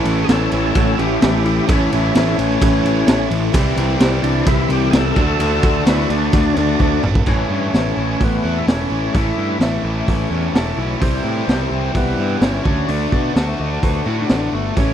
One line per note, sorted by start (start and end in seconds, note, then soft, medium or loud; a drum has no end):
0.00 1.21 A2 medium
0.00 0.27 E3 medium
0.00 0.27 A3 medium
0.00 1.67 A3 loud
0.00 0.19 C#4 medium
0.00 0.28 C#4 loud
0.00 1.68 C#4 medium
0.00 3.51 C#4 medium
0.00 0.19 E4 medium
0.00 0.29 E4 loud
0.00 1.71 E4 medium
0.00 3.51 E4 medium
0.00 0.19 A4 medium
0.00 3.50 A4 medium
0.00 3.51 E5 medium
0.04 0.23 A1 medium
0.04 0.28 A3 medium
0.04 0.29 C#4 medium
0.04 0.30 E4 medium
0.04 ride medium
0.24 1.22 E3 medium
0.24 0.27 G#4 medium
0.28 0.47 A1 medium
0.28 0.99 A3 medium
0.28 0.66 C#4 medium
0.28 0.51 C#4 medium
0.28 0.97 C#4 medium
0.28 0.66 E4 medium
0.28 0.97 E4 medium
0.28 0.66 A4 medium
0.28 0.52 A4 medium
0.28 snare medium
0.28 ride medium
0.51 0.70 A1 medium
0.51 0.75 A3 soft
0.51 0.75 C#4 soft
0.51 0.74 C#4 medium
0.51 0.75 E4 soft
0.51 0.75 A4 medium
0.51 ride medium
0.74 0.93 A1 medium
0.74 1.21 A2 medium
0.74 1.20 E3 medium
0.74 1.21 A3 medium
0.74 1.12 C#4 medium
0.74 0.97 C#4 medium
0.74 1.21 C#4 medium
0.74 1.12 E4 medium
0.74 1.24 E4 medium
0.74 1.13 F#4 medium
0.74 0.98 A4 medium
0.74 kick loud
0.74 ride medium
0.97 1.17 A1 medium
0.97 1.21 A3 medium
0.97 1.22 C#4 medium
0.97 1.24 E4 medium
0.97 1.20 E4 medium
0.97 1.21 G4 medium
0.97 ride medium
1.21 1.58 A1 medium
1.21 1.66 A2 medium
1.21 1.68 E3 medium
1.21 1.46 A3 medium
1.21 1.59 C#4 medium
1.21 1.44 C#4 medium
1.21 1.43 E4 medium
1.21 1.59 E4 medium
1.21 1.44 E4 medium
1.21 1.45 G4 medium
1.21 1.59 A4 medium
1.21 snare loud
1.21 ride medium
1.44 1.68 A3 medium
1.44 1.69 C#4 medium
1.44 1.70 E4 medium
1.44 1.66 E4 medium
1.44 1.68 G4 medium
1.44 ride medium
1.67 1.87 A1 loud
1.67 2.14 A2 medium
1.67 2.14 E3 loud
1.67 1.92 A3 medium
1.67 2.05 C#4 medium
1.67 1.90 C#4 medium
1.67 1.91 C#4 loud
1.67 2.05 E4 medium
1.67 1.92 E4 medium
1.67 1.90 E4 loud
1.67 2.06 A4 medium
1.67 kick loud
1.67 ride medium
1.90 2.10 A1 medium
1.90 2.14 A3 medium
1.90 2.15 C#4 medium
1.90 2.14 C#4 medium
1.90 2.17 E4 medium
1.90 ride medium
1.95 2.15 E4 medium
2.14 2.33 A1 medium
2.14 3.07 E3 medium
2.14 2.85 A3 medium
2.14 2.52 C#4 medium
2.14 2.84 C#4 medium
2.14 2.37 C#4 medium
2.14 2.52 E4 medium
2.14 2.38 E4 medium
2.14 2.82 E4 medium
2.14 2.52 A4 medium
2.14 snare medium
2.14 ride medium
2.38 2.56 A1 medium
2.38 3.28 C#4 medium
2.38 ride medium
2.60 2.80 A1 loud
2.60 3.07 A2 medium
2.60 3.05 E3 medium
2.60 3.06 A3 medium
2.60 3.07 C#4 medium
2.60 2.99 C#4 medium
2.60 3.08 E4 medium
2.60 2.99 E4 medium
2.60 2.99 A4 medium
2.60 kick loud
2.60 ride loud
2.83 3.02 A1 medium
2.83 3.07 A3 medium
2.83 3.08 C#4 medium
2.83 3.08 E4 medium
2.83 ride medium
3.06 3.26 A1 medium
3.06 3.52 A2 medium
3.06 3.53 E3 medium
3.06 3.33 A3 medium
3.06 3.44 C#4 medium
3.06 3.31 C#4 medium
3.06 3.44 E4 medium
3.06 3.29 E4 medium
3.06 3.44 A4 medium
3.06 snare loud
3.06 ride loud
3.30 3.49 A1 loud
3.30 3.54 A3 medium
3.30 3.53 C#4 medium
3.30 3.52 E4 medium
3.30 ride medium
3.53 3.72 C2 medium
3.53 4.00 C3 loud
3.53 3.99 E3 medium
3.53 3.78 G3 loud
3.53 5.15 C4 medium
3.53 3.91 C4 medium
3.53 3.77 C4 medium
3.53 5.15 E4 medium
3.53 3.92 E4 medium
3.53 3.76 E4 loud
3.53 3.91 G4 medium
3.53 5.15 G4 medium
3.53 5.15 E5 medium
3.53 kick loud
3.53 ride loud
3.77 3.95 C2 medium
3.77 4.00 G3 medium
3.77 4.01 C4 medium
3.77 4.01 E4 medium
3.77 ride medium
4.00 4.19 C2 loud
4.00 4.91 E3 medium
4.00 4.71 G3 medium
4.00 4.38 C4 medium
4.00 4.69 C4 medium
4.00 4.37 E4 medium
4.00 4.67 E4 medium
4.00 4.38 G4 loud
4.00 snare medium
4.00 ride medium
4.22 4.42 C2 medium
4.22 4.45 G3 soft
4.22 4.45 C4 soft
4.22 4.46 D4 medium
4.22 4.46 E4 medium
4.22 ride medium
4.45 4.65 C2 medium
4.45 4.92 C3 medium
4.45 4.90 E3 medium
4.45 4.91 G3 medium
4.45 4.93 C4 medium
4.45 4.85 C4 medium
4.45 4.93 E4 medium
4.45 4.84 E4 medium
4.45 4.70 E4 loud
4.45 4.85 G4 medium
4.45 kick loud
4.45 ride medium
4.69 4.88 C2 medium
4.69 4.92 G3 medium
4.69 4.93 C4 medium
4.69 4.93 E4 medium
4.69 ride medium
4.73 4.94 G4 medium
4.91 5.11 C2 medium
4.91 5.14 C3 medium
4.91 5.15 E3 medium
4.91 5.15 G3 medium
4.91 5.16 C4 medium
4.91 5.17 C4 medium
4.91 5.17 E4 medium
4.91 5.15 E4 medium
4.91 5.17 G4 medium
4.91 4.94 G#4 medium
4.91 snare loud
4.91 ride medium
4.95 5.85 A4 medium
5.15 5.35 D2 loud
5.15 5.37 D3 medium
5.15 5.39 A3 medium
5.15 7.25 A3 medium
5.15 5.40 D4 medium
5.15 7.25 D4 medium
5.15 5.73 D4 medium
5.15 5.40 F#4 loud
5.15 7.25 F#4 medium
5.15 5.73 F#4 medium
5.15 5.73 A4 medium
5.15 7.25 D5 medium
5.15 kick medium
5.15 ride medium
5.39 5.58 D2 loud
5.39 5.84 D3 medium
5.39 5.65 A3 medium
5.39 5.63 D4 medium
5.39 5.61 F#4 loud
5.39 ride medium
5.62 5.81 D2 loud
5.62 5.86 A3 medium
5.62 5.86 D4 medium
5.62 5.87 F#4 medium
5.62 kick medium
5.62 ride medium
5.85 6.05 D2 medium
5.85 6.78 D3 medium
5.85 6.58 A3 medium
5.85 6.23 D4 medium
5.85 6.56 D4 medium
5.85 6.10 E4 loud
5.85 6.24 F#4 medium
5.85 6.55 F#4 medium
5.85 6.24 B4 medium
5.85 snare medium
5.85 ride medium
6.09 6.28 D2 medium
6.09 6.31 A3 soft
6.09 6.32 D4 medium
6.09 6.32 D4 soft
6.09 6.33 F#4 medium
6.09 ride medium
6.32 6.51 D2 medium
6.32 6.78 D3 medium
6.32 6.79 A3 medium
6.32 6.56 D4 medium
6.32 6.71 D4 medium
6.32 6.80 D4 medium
6.32 6.71 F#4 medium
6.32 6.80 F#4 medium
6.32 6.71 A4 medium
6.32 kick medium
6.32 ride medium
6.54 6.75 D2 medium
6.54 6.57 C#4 medium
6.54 6.80 D4 medium
6.54 6.81 F#4 medium
6.54 ride medium
6.59 6.80 A3 medium
6.59 7.03 D4 loud
6.79 6.98 D2 medium
6.79 7.25 D3 medium
6.79 7.05 A3 medium
6.79 7.18 D4 medium
6.79 7.03 D4 medium
6.79 7.18 F#4 medium
6.79 7.01 F#4 medium
6.79 7.18 A4 medium
6.79 kick medium
7.03 7.22 G#1 medium
7.03 7.26 A3 medium
7.03 7.26 D4 medium
7.03 7.25 F#4 medium
7.03 mid tom medium
7.15 kick medium
7.25 7.44 A1 medium
7.25 7.71 A2 medium
7.25 7.72 E3 medium
7.25 7.51 A3 medium
7.25 7.64 C#4 medium
7.25 7.50 C#4 medium
7.25 8.24 C#4 medium
7.25 7.64 E4 medium
7.25 7.48 E4 medium
7.25 7.64 A4 medium
7.25 kick loud
7.25 crash medium
7.48 7.67 G2 medium
7.48 7.73 A3 medium
7.48 7.73 C#4 medium
7.48 7.74 E4 medium
7.72 7.91 A1 medium
7.72 8.66 A2 medium
7.72 8.66 E3 medium
7.72 8.44 A3 medium
7.72 8.43 C#4 medium
7.72 8.11 C#4 medium
7.72 8.11 E4 medium
7.72 8.42 E4 medium
7.72 8.11 B4 medium
7.72 snare medium
7.72 open hi-hat soft
7.96 8.14 A1 medium
7.96 8.68 E3 medium
7.96 8.66 A3 medium
7.96 8.66 C#4 medium
7.96 8.70 E4 medium
8.00 8.65 A2 medium
8.19 8.38 A1 medium
8.19 8.57 C#4 medium
8.19 8.58 E4 medium
8.19 8.57 A4 medium
8.19 kick medium
8.19 open hi-hat soft
8.24 8.59 B3 medium
8.42 8.61 E2 medium
8.42 8.66 A3 medium
8.42 8.66 C#4 medium
8.42 8.68 E4 medium
8.58 8.66 E4 medium
8.66 8.85 E1 medium
8.66 9.12 A2 medium
8.66 9.13 E3 medium
8.66 8.92 A3 medium
8.66 9.04 C#4 medium
8.66 8.90 C#4 medium
8.66 9.16 C#4 medium
8.66 9.04 E4 medium
8.66 8.89 E4 soft
8.66 9.04 A4 medium
8.66 snare loud
8.66 open hi-hat soft
8.90 9.08 A1 medium
8.90 9.13 A3 soft
8.90 9.14 C#4 medium
8.90 9.15 E4 medium
9.13 9.32 A1 medium
9.13 9.58 A2 medium
9.13 9.60 E3 medium
9.13 9.38 A3 medium
9.13 9.51 C#4 medium
9.13 9.37 C#4 medium
9.13 9.51 E4 medium
9.13 9.58 E4 medium
9.13 9.36 E4 loud
9.13 9.52 A4 medium
9.13 kick loud
9.13 open hi-hat soft
9.36 9.55 G2 medium
9.36 9.60 A3 medium
9.36 9.60 C#4 medium
9.36 9.62 E4 medium
9.59 9.78 A1 medium
9.59 10.54 A2 medium
9.59 10.53 E3 medium
9.59 10.32 A3 medium
9.59 9.99 C#4 medium
9.59 10.31 C#4 medium
9.59 9.99 E4 medium
9.59 10.29 E4 medium
9.59 9.99 A4 medium
9.59 10.53 E5 loud
9.59 snare medium
9.59 open hi-hat soft
9.83 10.01 A1 medium
9.83 10.53 E3 medium
9.83 10.54 A3 medium
9.83 10.54 C#4 medium
9.83 10.53 E4 medium
9.88 10.52 A2 medium
10.08 10.25 A1 medium
10.08 10.46 C#4 medium
10.08 10.46 E4 medium
10.08 10.46 A4 loud
10.08 kick medium
10.08 open hi-hat soft
10.30 10.48 E2 medium
10.30 10.54 A3 medium
10.30 10.55 C#4 medium
10.30 10.56 E4 medium
10.53 10.72 E1 medium
10.53 10.99 A2 medium
10.53 11.00 E3 medium
10.53 10.78 A3 medium
10.53 10.92 C#4 medium
10.53 10.77 C#4 medium
10.53 10.92 E4 medium
10.53 10.92 A4 loud
10.53 10.78 A5 medium
10.53 snare loud
10.53 open hi-hat soft
10.57 10.76 E4 medium
10.77 10.95 B1 medium
10.77 11.01 A3 medium
10.77 11.00 C#4 medium
10.77 11.00 E4 medium
11.00 11.19 C2 medium
11.00 11.45 C3 medium
11.00 11.46 E3 medium
11.00 11.25 G3 medium
11.00 11.39 C4 medium
11.00 11.92 C4 medium
11.00 11.23 C4 medium
11.00 11.39 E4 medium
11.00 11.21 E4 medium
11.00 11.39 G4 medium
11.00 kick loud
11.00 open hi-hat soft
11.23 11.42 A2 medium
11.23 11.47 G3 medium
11.23 11.47 C4 medium
11.23 11.48 E4 medium
11.46 11.65 C2 medium
11.46 12.41 C3 medium
11.46 12.39 E3 medium
11.46 12.18 G3 medium
11.46 11.86 C4 medium
11.46 12.17 C4 medium
11.46 11.86 E4 medium
11.46 12.15 E4 medium
11.46 11.86 G4 medium
11.46 snare medium
11.46 open hi-hat soft
11.70 11.89 C2 medium
11.70 12.39 C3 medium
11.70 12.40 E3 medium
11.70 12.41 G3 medium
11.70 12.41 C4 medium
11.70 12.40 E4 medium
11.95 12.12 C2 medium
11.95 12.33 G3 medium
11.95 12.44 B3 medium
11.95 12.33 E4 medium
11.95 12.33 G4 medium
11.95 kick medium
11.95 open hi-hat soft
12.16 12.36 G2 medium
12.16 12.41 G3 medium
12.16 12.42 C4 medium
12.16 12.43 E4 medium
12.41 12.59 G1 medium
12.41 12.64 C3 medium
12.41 12.64 E3 medium
12.41 12.64 G3 medium
12.41 12.66 C4 medium
12.41 12.64 C4 medium
12.41 12.91 C#4 medium
12.41 12.66 E4 medium
12.41 12.63 E4 medium
12.41 12.65 G4 medium
12.41 snare loud
12.41 open hi-hat soft
12.63 12.83 D2 medium
12.63 12.86 D3 medium
12.63 12.88 A3 medium
12.63 13.22 D4 medium
12.63 12.89 D4 medium
12.63 12.89 F#4 medium
12.63 13.21 F#4 medium
12.63 13.22 A4 medium
12.63 kick medium
12.67 13.36 F#4 medium
12.88 13.06 D2 medium
12.88 13.33 D3 medium
12.88 13.13 A3 medium
12.88 13.32 D4 medium
12.88 13.11 D4 medium
12.88 13.09 F#4 medium
12.88 open hi-hat soft
13.10 13.30 B2 medium
13.10 13.36 A3 medium
13.10 13.36 D4 medium
13.10 13.36 F#4 medium
13.10 kick medium
13.34 13.53 D2 medium
13.34 14.28 D3 medium
13.34 14.08 A3 medium
13.34 13.73 D4 medium
13.34 14.05 D4 medium
13.34 13.73 F#4 medium
13.34 14.04 F#4 medium
13.34 13.73 A4 medium
13.34 13.48 A5 medium
13.34 snare medium
13.34 open hi-hat soft
13.48 13.60 E5 medium
13.60 13.77 D2 medium
13.60 13.72 D#5 medium
13.73 13.84 D5 medium
13.83 14.00 D2 medium
13.83 14.21 D4 medium
13.83 14.21 F#4 medium
13.83 14.21 B4 medium
13.83 13.95 C5 medium
13.83 kick medium
13.83 open hi-hat soft
13.97 14.07 A4 medium
14.05 14.24 A2 medium
14.05 14.53 D3 medium
14.05 14.30 A3 medium
14.05 14.29 D4 medium
14.05 14.19 E4 medium
14.05 14.31 F#4 medium
14.21 14.31 D4 medium
14.29 14.47 A1 medium
14.29 14.75 D3 medium
14.29 14.54 A3 medium
14.29 14.52 D4 medium
14.29 14.68 D4 medium
14.29 14.54 D4 medium
14.29 14.68 F#4 medium
14.29 14.50 F#4 medium
14.29 14.68 A4 medium
14.29 snare loud
14.29 open hi-hat soft
14.51 14.70 G1 medium
14.51 14.77 A3 medium
14.51 14.76 D4 medium
14.51 14.75 F#4 medium
14.76 14.94 A1 medium
14.76 14.94 A2 medium
14.76 14.94 E3 medium
14.76 14.94 A3 medium
14.76 14.94 C#4 medium
14.76 14.94 E4 medium
14.76 14.94 A4 medium
14.76 kick loud
14.76 open hi-hat soft